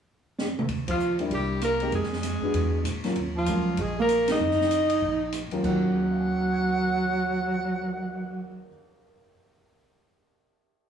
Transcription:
0.39 snare
0.59 mid tom
0.69 upright bass D#2, kick, ride
0.88 tenor saxophone F3, alto saxophone F4, kick, ride
1.00 hi-hat pedal
1.19 grand piano G3 A#3 D4 E4, ride
1.30 upright bass C2, tenor saxophone G3, kick, ride
1.35 alto saxophone G4
1.61 tenor saxophone A#3, alto saxophone A#4, cross-stick, hi-hat pedal, ride
1.80 grand piano G#3 C4 D#4 G4, ride
1.92 upright bass F2, tenor saxophone G#3, alto saxophone G#4, kick, ride
2.03 snare
2.13 snare
2.23 snare, hi-hat pedal, ride
2.41 grand piano G#3 B3 D4 F#4, muted upright bass stroke
2.54 upright bass E2, kick, ride
2.84 upright bass A#2, cross-stick, hi-hat pedal, ride
3.04 grand piano F#3 A#3 C#4 F4, snare, ride
3.16 upright bass D#2, kick, ride
3.36 tenor saxophone F3, alto saxophone F4
3.46 upright bass C#2, grand piano F#3 A#3 C#4 F4, hi-hat pedal, ride
3.77 upright bass A#1, tenor saxophone G#3, kick, ride
3.82 alto saxophone G#4
4.00 tenor saxophone A#3, alto saxophone A#4
4.09 cross-stick, hi-hat pedal, ride
4.28 tenor saxophone D#4, snare, ride
4.32 alto saxophone D#5
4.40 upright bass F#1
4.51 snare
4.61 snare
4.71 hi-hat pedal, ride
4.90 ride
5.02 upright bass A#1, kick
5.32 cross-stick, hi-hat pedal, ride
5.51 grand piano D#2 F#3 A#3 C#4 F4, muted upright bass stroke, ride
5.63 upright bass D#2, grand piano D#2 D#3 F#3 C#4 F#4, tenor saxophone F#3, alto saxophone F#5, kick, crash
5.83 cymbal swell
5.96 grand piano G#4
6.03 grand piano C#5
6.11 grand piano F5
6.20 grand piano G#5
6.30 grand piano C#6
6.41 grand piano F6
6.53 grand piano G#6

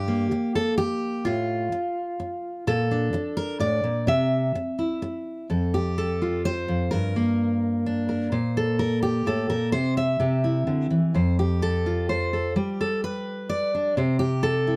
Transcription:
Already playing: steel-string acoustic guitar G2 G4
0.08 steel-string acoustic guitar A#3
0.31 muted steel-string acoustic guitar stroke
0.55 steel-string acoustic guitar A4
0.78 steel-string acoustic guitar G4, muted steel-string acoustic guitar stroke
1.25 steel-string acoustic guitar A2 F4
1.72 muted steel-string acoustic guitar stroke
2.20 muted steel-string acoustic guitar stroke
2.67 steel-string acoustic guitar A#2 A4
2.91 steel-string acoustic guitar D4
3.13 muted steel-string acoustic guitar stroke
3.37 steel-string acoustic guitar A#4
3.60 steel-string acoustic guitar A2 D5
3.84 steel-string acoustic guitar A#2
4.07 steel-string acoustic guitar C3 E5
4.55 muted steel-string acoustic guitar stroke
4.79 steel-string acoustic guitar E4
5.02 muted steel-string acoustic guitar stroke
5.50 steel-string acoustic guitar F2 A4
5.74 steel-string acoustic guitar G4
5.98 steel-string acoustic guitar A4
6.22 steel-string acoustic guitar F4
6.45 steel-string acoustic guitar C5
6.68 steel-string acoustic guitar F2
6.91 steel-string acoustic guitar G2 A#4
7.16 steel-string acoustic guitar A#3
7.86 steel-string acoustic guitar D4
8.09 steel-string acoustic guitar A#4
8.32 steel-string acoustic guitar A#2 C5
8.57 steel-string acoustic guitar A4
8.79 steel-string acoustic guitar A#4
9.03 steel-string acoustic guitar G4
9.26 steel-string acoustic guitar A2 A4
9.50 steel-string acoustic guitar A#2 A#4
9.72 steel-string acoustic guitar C3 C5
9.97 steel-string acoustic guitar E5
10.20 steel-string acoustic guitar C3 G4
10.44 steel-string acoustic guitar E4
10.67 steel-string acoustic guitar D3
10.90 steel-string acoustic guitar E3
11.14 steel-string acoustic guitar F2 C5
11.39 steel-string acoustic guitar G4
11.62 steel-string acoustic guitar A4
11.86 steel-string acoustic guitar F4
12.09 steel-string acoustic guitar C5
12.33 steel-string acoustic guitar A4
12.56 steel-string acoustic guitar G3 G4
12.81 steel-string acoustic guitar A4
13.04 steel-string acoustic guitar B4
13.49 steel-string acoustic guitar D5
13.75 steel-string acoustic guitar D4
13.97 steel-string acoustic guitar C3 C5
14.19 steel-string acoustic guitar G4
14.43 steel-string acoustic guitar A4
14.67 steel-string acoustic guitar E4

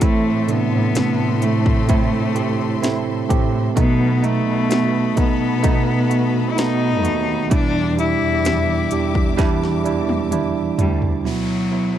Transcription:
Already playing: string section E5
0.01 cello section A2, tine electric piano A2 E3 A3 C4 E4, cello A3, string section A4 C6, kick, closed hi-hat
0.48 tine electric piano C3 A3 D4, cello B3, closed hi-hat
0.72 cello section A2
0.95 cello section A2, tine electric piano C3 A3 E4, snare, closed hi-hat
1.42 tine electric piano A3 C4 E4, cello A3, closed hi-hat
1.66 kick
1.89 tine electric piano A3 C4 E4, kick, closed hi-hat
2.35 tine electric piano A3 C4 G4, closed hi-hat
2.82 tine electric piano A3 C4 E4, snare, closed hi-hat
3.29 cello section A2, tine electric piano A3 C4 G4, kick, closed hi-hat
3.76 tine electric piano B2 F#3 A3 B3 D#4, cello section B2, cello B3, string section A4 D#5 B5, kick, closed hi-hat
4.22 tine electric piano A3 B3 D#4, cello A3, closed hi-hat
4.47 cello section B2
4.69 tine electric piano A3 B3 F#4, snare, closed hi-hat
5.16 cello section B2, tine electric piano A3 B3 D#4, cello B3, kick, closed hi-hat
5.63 tine electric piano A3 B3 D#4, kick, closed hi-hat
6.09 tine electric piano A3 B3 F#4, closed hi-hat
6.51 cello E4
6.56 cello section B2, tine electric piano A3 B3 D#4, cello D#4, snare, closed hi-hat
7.02 cello section D#2, tine electric piano A3 B3 F#4, closed hi-hat
7.50 cello section E2, tine electric piano B2 G3 D4 E4, cello D4, string section G4 E5 D6, kick, closed hi-hat
7.97 tine electric piano G3 D4 E4, cello E4, closed hi-hat
8.22 cello section E2
8.44 tine electric piano G3 D4 E4, snare, closed hi-hat
8.91 cello section E2, tine electric piano G3 D4 G4, closed hi-hat
9.15 kick
9.37 tine electric piano G3 D4 E4, kick, snare, closed hi-hat
9.63 snare
9.84 tine electric piano G3 D4 E4, closed hi-hat
10.09 high tom
10.32 tine electric piano G3 D4 E4, closed hi-hat, mid tom
10.78 cello section D2, tine electric piano G3 D4 E4, cello G3, closed hi-hat, floor tom
11.02 floor tom
11.24 tine electric piano B2 F#3 B3 E4, cello F#3, downlifter
11.72 tine electric piano F#3 B3 E4

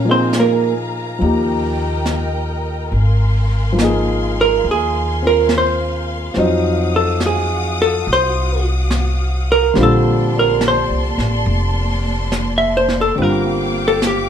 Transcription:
Already playing: upright bass A#2, string section A#4 F5 G#5 A#5
0.05 grand piano F3 A#3 D#4 G#4
0.11 hollow-body jazz guitar C4 C5
0.33 snare, hi-hat pedal
0.40 hollow-body jazz guitar A#3 A#4
1.19 upright bass D#2, grand piano F3 A#3 D#4, string section G5, brush sweep
1.23 grand piano G4, string section D#5
2.05 snare, hi-hat pedal
2.92 upright bass G#1, string section F5 G#5, brush sweep
2.96 string section C6
3.72 grand piano F3
3.77 grand piano A#3 D#4, snare, hi-hat pedal
3.84 grand piano G#4
4.41 hollow-body jazz guitar A#4
4.64 upright bass D#2, brush sweep
4.71 hollow-body jazz guitar G#4
5.22 grand piano C4 F4 A#4
5.27 hollow-body jazz guitar A#4
5.49 snare, hi-hat pedal
5.58 hollow-body jazz guitar C5
6.34 upright bass F2, grand piano F3 F#3 C4, string section F#4 F#5 D#6, brush sweep, snare
6.38 grand piano D#4
6.96 hollow-body jazz guitar A4
7.20 snare, hi-hat pedal
7.26 hollow-body jazz guitar G#4
7.82 hollow-body jazz guitar A4
8.06 upright bass C2, brush sweep
8.13 hollow-body jazz guitar C5
8.91 snare, hi-hat pedal
9.52 hollow-body jazz guitar A#4
9.74 upright bass A#1, grand piano D3 G3 C4, string section A#3 D5 A5 C6, brush sweep, snare
9.78 grand piano F4
9.83 hollow-body jazz guitar A4
10.39 hollow-body jazz guitar A#4
10.61 snare, hi-hat pedal
10.68 hollow-body jazz guitar C5
10.90 upright bass C2
11.18 upright bass A1, snare
11.46 upright bass F1, brush sweep
12.32 snare, hi-hat pedal
12.58 hollow-body jazz guitar E5
12.77 hollow-body jazz guitar C5
12.88 snare
13.01 hollow-body jazz guitar A4
13.13 grand piano D3, string section F5 G5 D6
13.17 upright bass G1, grand piano G3 C4 F4, brush sweep
13.22 hollow-body jazz guitar A#4
13.88 hollow-body jazz guitar A4
14.02 snare, hi-hat pedal
14.07 hollow-body jazz guitar G4

